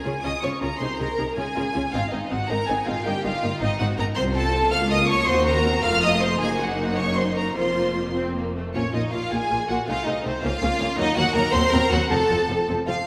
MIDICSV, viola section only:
0, 0, Header, 1, 2, 480
1, 0, Start_track
1, 0, Tempo, 373134
1, 1046, Time_signature, 6, 3, 24, 8
1, 8234, Tempo, 389105
1, 11594, Tempo, 371287
1, 14954, Tempo, 384862
1, 16630, End_track
2, 0, Start_track
2, 0, Title_t, "Viola section"
2, 0, Program_c, 0, 48
2, 72, Note_on_c, 0, 61, 55
2, 72, Note_on_c, 0, 65, 58
2, 170, Note_off_c, 0, 61, 0
2, 170, Note_off_c, 0, 65, 0
2, 306, Note_on_c, 0, 61, 64
2, 306, Note_on_c, 0, 65, 61
2, 405, Note_off_c, 0, 61, 0
2, 406, Note_off_c, 0, 65, 0
2, 549, Note_on_c, 0, 65, 63
2, 556, Note_on_c, 0, 61, 59
2, 648, Note_off_c, 0, 65, 0
2, 654, Note_off_c, 0, 61, 0
2, 792, Note_on_c, 0, 61, 61
2, 793, Note_on_c, 0, 65, 59
2, 891, Note_off_c, 0, 61, 0
2, 892, Note_off_c, 0, 65, 0
2, 1041, Note_on_c, 0, 68, 64
2, 1043, Note_on_c, 0, 63, 63
2, 1138, Note_off_c, 0, 68, 0
2, 1139, Note_off_c, 0, 63, 0
2, 1279, Note_on_c, 0, 63, 55
2, 1280, Note_on_c, 0, 68, 56
2, 1377, Note_off_c, 0, 63, 0
2, 1378, Note_off_c, 0, 68, 0
2, 1521, Note_on_c, 0, 68, 57
2, 1522, Note_on_c, 0, 63, 58
2, 1619, Note_off_c, 0, 68, 0
2, 1620, Note_off_c, 0, 63, 0
2, 1759, Note_on_c, 0, 65, 68
2, 1761, Note_on_c, 0, 61, 69
2, 1857, Note_off_c, 0, 65, 0
2, 1859, Note_off_c, 0, 61, 0
2, 2001, Note_on_c, 0, 61, 64
2, 2004, Note_on_c, 0, 65, 64
2, 2099, Note_off_c, 0, 61, 0
2, 2102, Note_off_c, 0, 65, 0
2, 2250, Note_on_c, 0, 65, 63
2, 2251, Note_on_c, 0, 61, 65
2, 2347, Note_off_c, 0, 61, 0
2, 2347, Note_off_c, 0, 65, 0
2, 2488, Note_on_c, 0, 60, 69
2, 2489, Note_on_c, 0, 63, 66
2, 2586, Note_off_c, 0, 60, 0
2, 2586, Note_off_c, 0, 63, 0
2, 2727, Note_on_c, 0, 60, 64
2, 2729, Note_on_c, 0, 63, 60
2, 2825, Note_off_c, 0, 60, 0
2, 2826, Note_off_c, 0, 63, 0
2, 2968, Note_on_c, 0, 63, 63
2, 2970, Note_on_c, 0, 60, 62
2, 3066, Note_off_c, 0, 63, 0
2, 3068, Note_off_c, 0, 60, 0
2, 3213, Note_on_c, 0, 60, 69
2, 3217, Note_on_c, 0, 63, 71
2, 3310, Note_off_c, 0, 60, 0
2, 3313, Note_off_c, 0, 63, 0
2, 3454, Note_on_c, 0, 63, 69
2, 3455, Note_on_c, 0, 60, 67
2, 3550, Note_off_c, 0, 63, 0
2, 3551, Note_off_c, 0, 60, 0
2, 3687, Note_on_c, 0, 60, 71
2, 3692, Note_on_c, 0, 63, 72
2, 3784, Note_off_c, 0, 60, 0
2, 3788, Note_off_c, 0, 63, 0
2, 3924, Note_on_c, 0, 63, 72
2, 3927, Note_on_c, 0, 58, 75
2, 4021, Note_off_c, 0, 63, 0
2, 4024, Note_off_c, 0, 58, 0
2, 4161, Note_on_c, 0, 58, 65
2, 4161, Note_on_c, 0, 63, 63
2, 4258, Note_off_c, 0, 58, 0
2, 4258, Note_off_c, 0, 63, 0
2, 4403, Note_on_c, 0, 58, 69
2, 4404, Note_on_c, 0, 63, 68
2, 4499, Note_off_c, 0, 58, 0
2, 4500, Note_off_c, 0, 63, 0
2, 4637, Note_on_c, 0, 63, 75
2, 4638, Note_on_c, 0, 60, 80
2, 4734, Note_off_c, 0, 63, 0
2, 4735, Note_off_c, 0, 60, 0
2, 4886, Note_on_c, 0, 60, 75
2, 4888, Note_on_c, 0, 63, 76
2, 4980, Note_off_c, 0, 60, 0
2, 4982, Note_off_c, 0, 63, 0
2, 5117, Note_on_c, 0, 60, 72
2, 5118, Note_on_c, 0, 63, 80
2, 5213, Note_off_c, 0, 60, 0
2, 5214, Note_off_c, 0, 63, 0
2, 5351, Note_on_c, 0, 65, 83
2, 5352, Note_on_c, 0, 60, 80
2, 6017, Note_off_c, 0, 60, 0
2, 6072, Note_on_c, 0, 58, 89
2, 6733, Note_off_c, 0, 65, 0
2, 6738, Note_off_c, 0, 58, 0
2, 6781, Note_on_c, 0, 66, 82
2, 6784, Note_on_c, 0, 60, 79
2, 7457, Note_off_c, 0, 66, 0
2, 7458, Note_off_c, 0, 60, 0
2, 7509, Note_on_c, 0, 57, 88
2, 7510, Note_on_c, 0, 65, 86
2, 8184, Note_off_c, 0, 57, 0
2, 8184, Note_off_c, 0, 65, 0
2, 8231, Note_on_c, 0, 58, 80
2, 8231, Note_on_c, 0, 63, 80
2, 9612, Note_off_c, 0, 58, 0
2, 9613, Note_off_c, 0, 63, 0
2, 9663, Note_on_c, 0, 65, 67
2, 9664, Note_on_c, 0, 58, 68
2, 10380, Note_off_c, 0, 58, 0
2, 10394, Note_off_c, 0, 65, 0
2, 10398, Note_on_c, 0, 60, 86
2, 10623, Note_off_c, 0, 60, 0
2, 10642, Note_on_c, 0, 58, 74
2, 10880, Note_off_c, 0, 58, 0
2, 10881, Note_on_c, 0, 57, 67
2, 11117, Note_off_c, 0, 57, 0
2, 11124, Note_on_c, 0, 58, 66
2, 11128, Note_on_c, 0, 65, 64
2, 11218, Note_off_c, 0, 58, 0
2, 11221, Note_off_c, 0, 65, 0
2, 11354, Note_on_c, 0, 58, 58
2, 11354, Note_on_c, 0, 65, 54
2, 11449, Note_off_c, 0, 58, 0
2, 11449, Note_off_c, 0, 65, 0
2, 11585, Note_on_c, 0, 58, 59
2, 11589, Note_on_c, 0, 65, 58
2, 11685, Note_off_c, 0, 58, 0
2, 11689, Note_off_c, 0, 65, 0
2, 11830, Note_on_c, 0, 65, 65
2, 11831, Note_on_c, 0, 58, 66
2, 11929, Note_off_c, 0, 65, 0
2, 11930, Note_off_c, 0, 58, 0
2, 12085, Note_on_c, 0, 65, 65
2, 12087, Note_on_c, 0, 58, 64
2, 12180, Note_off_c, 0, 65, 0
2, 12182, Note_off_c, 0, 58, 0
2, 12324, Note_on_c, 0, 65, 66
2, 12328, Note_on_c, 0, 58, 66
2, 12419, Note_off_c, 0, 65, 0
2, 12422, Note_off_c, 0, 58, 0
2, 12564, Note_on_c, 0, 57, 65
2, 12570, Note_on_c, 0, 63, 69
2, 12659, Note_off_c, 0, 57, 0
2, 12664, Note_off_c, 0, 63, 0
2, 12804, Note_on_c, 0, 57, 61
2, 12808, Note_on_c, 0, 63, 63
2, 12899, Note_off_c, 0, 57, 0
2, 12902, Note_off_c, 0, 63, 0
2, 13049, Note_on_c, 0, 63, 67
2, 13051, Note_on_c, 0, 57, 67
2, 13142, Note_off_c, 0, 63, 0
2, 13144, Note_off_c, 0, 57, 0
2, 13287, Note_on_c, 0, 61, 77
2, 13291, Note_on_c, 0, 58, 81
2, 13380, Note_off_c, 0, 61, 0
2, 13384, Note_off_c, 0, 58, 0
2, 13515, Note_on_c, 0, 58, 76
2, 13518, Note_on_c, 0, 61, 78
2, 13611, Note_off_c, 0, 58, 0
2, 13613, Note_off_c, 0, 61, 0
2, 13759, Note_on_c, 0, 61, 78
2, 13760, Note_on_c, 0, 58, 80
2, 13854, Note_off_c, 0, 58, 0
2, 13854, Note_off_c, 0, 61, 0
2, 13992, Note_on_c, 0, 54, 89
2, 13994, Note_on_c, 0, 58, 87
2, 14087, Note_off_c, 0, 54, 0
2, 14090, Note_off_c, 0, 58, 0
2, 14230, Note_on_c, 0, 58, 76
2, 14234, Note_on_c, 0, 54, 77
2, 14326, Note_off_c, 0, 58, 0
2, 14330, Note_off_c, 0, 54, 0
2, 14479, Note_on_c, 0, 58, 81
2, 14480, Note_on_c, 0, 54, 80
2, 14574, Note_off_c, 0, 58, 0
2, 14575, Note_off_c, 0, 54, 0
2, 14716, Note_on_c, 0, 60, 92
2, 14717, Note_on_c, 0, 54, 87
2, 14812, Note_off_c, 0, 60, 0
2, 14813, Note_off_c, 0, 54, 0
2, 14960, Note_on_c, 0, 54, 79
2, 14961, Note_on_c, 0, 60, 82
2, 15054, Note_off_c, 0, 54, 0
2, 15055, Note_off_c, 0, 60, 0
2, 15198, Note_on_c, 0, 54, 82
2, 15198, Note_on_c, 0, 60, 82
2, 15293, Note_off_c, 0, 60, 0
2, 15294, Note_off_c, 0, 54, 0
2, 15433, Note_on_c, 0, 53, 75
2, 15434, Note_on_c, 0, 60, 72
2, 15530, Note_off_c, 0, 53, 0
2, 15531, Note_off_c, 0, 60, 0
2, 15675, Note_on_c, 0, 60, 67
2, 15677, Note_on_c, 0, 53, 65
2, 15771, Note_off_c, 0, 60, 0
2, 15773, Note_off_c, 0, 53, 0
2, 15921, Note_on_c, 0, 53, 60
2, 15921, Note_on_c, 0, 60, 61
2, 16015, Note_off_c, 0, 53, 0
2, 16015, Note_off_c, 0, 60, 0
2, 16159, Note_on_c, 0, 60, 67
2, 16161, Note_on_c, 0, 53, 66
2, 16254, Note_off_c, 0, 60, 0
2, 16255, Note_off_c, 0, 53, 0
2, 16400, Note_on_c, 0, 53, 63
2, 16401, Note_on_c, 0, 60, 58
2, 16495, Note_off_c, 0, 53, 0
2, 16496, Note_off_c, 0, 60, 0
2, 16630, End_track
0, 0, End_of_file